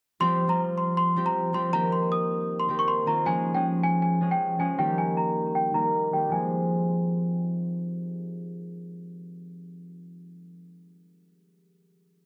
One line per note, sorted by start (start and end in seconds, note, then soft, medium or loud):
0.20 0.46 F3 loud
0.20 0.47 G3 medium
0.20 0.46 C4 medium
0.20 0.46 G4 medium
0.20 0.48 C6 loud
0.48 1.15 F3 medium
0.48 1.15 G3 medium
0.48 1.17 C4 medium
0.48 3.02 F4 medium
0.48 0.58 A#5 medium
0.78 0.94 C6 medium
0.97 1.24 C6 medium
1.16 1.52 F3 medium
1.16 1.52 G3 medium
1.16 1.50 C4 medium
1.16 1.50 G4 medium
1.26 1.53 A#5 medium
1.53 1.78 F3 medium
1.53 1.78 G3 medium
1.53 1.71 C4 medium
1.53 1.71 G4 medium
1.53 1.71 C6 medium
1.73 2.67 D#3 medium
1.73 2.69 A#3 medium
1.73 2.69 C4 medium
1.73 2.70 G4 loud
1.73 1.90 A#5 medium
1.92 2.09 C6 medium
2.12 2.57 D#6 medium
2.60 2.76 C6 medium
2.68 3.05 D#3 medium
2.68 3.02 A#3 medium
2.68 3.02 C4 medium
2.68 3.02 G4 medium
2.79 2.87 C#6 medium
2.88 3.05 C6 medium
3.06 3.31 D#3 medium
3.06 3.23 A#3 medium
3.06 3.24 C4 medium
3.06 3.24 F4 medium
3.06 3.24 A#5 medium
3.26 3.53 F3 loud
3.26 3.54 G#3 medium
3.26 3.51 C#4 medium
3.26 3.51 G#4 loud
3.26 3.53 G#5 loud
3.54 4.20 F3 medium
3.54 4.20 G#3 medium
3.54 4.22 C#4 medium
3.54 4.22 G#4 medium
3.54 3.63 G5 medium
3.84 4.00 G#5 medium
4.02 4.29 G#5 medium
4.21 4.58 F3 medium
4.21 4.58 G#3 medium
4.21 4.55 C#4 medium
4.21 4.55 G#4 medium
4.31 4.58 G5 medium
4.59 4.84 F3 medium
4.59 4.84 G#3 medium
4.59 4.76 C#4 medium
4.59 4.77 G#4 medium
4.59 4.77 G#5 medium
4.78 5.73 D#3 medium
4.78 5.73 G3 medium
4.78 5.75 A#3 medium
4.78 6.13 G4 loud
4.78 4.96 G5 medium
4.98 5.15 G#5 medium
5.17 5.53 A#5 medium
5.55 5.72 G5 medium
5.74 6.11 D#3 medium
5.74 6.12 G3 medium
5.74 6.08 A#3 medium
5.74 6.08 A#4 medium
5.74 6.10 A#5 medium
6.12 6.37 D#3 medium
6.12 6.37 G3 medium
6.12 6.30 A#3 medium
6.12 6.30 G4 medium
6.12 6.30 G5 medium
6.29 10.42 F3 medium
6.29 10.44 G#3 medium
6.29 7.43 G#5 medium
6.33 10.47 C4 medium
6.33 10.49 G#4 medium